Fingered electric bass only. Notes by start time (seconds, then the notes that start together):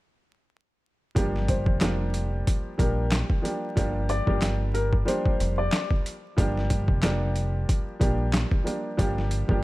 1.16 G1
1.67 F1
2.79 A#1
3.77 G1
4.28 G1
5.41 F1
6.38 G1
6.88 F1
8.01 A#1
8.99 G1
9.49 G1